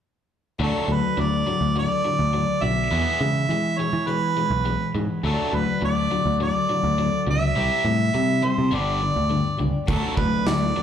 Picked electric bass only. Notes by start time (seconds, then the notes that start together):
0.60 D2
0.88 D2
1.18 D2
1.61 D2
2.19 D2
2.62 B1
2.92 E2
3.21 C#3
3.49 E3
3.93 E3
4.50 B1
4.95 G#2
5.24 D2
5.53 D2
5.82 D2
6.26 D2
6.83 D2
7.27 C#2
7.57 C2
7.85 A2
8.15 C3
8.58 C3
8.72 G1
9.16 D2
9.60 C#2
9.88 D2
10.17 D2
10.47 D2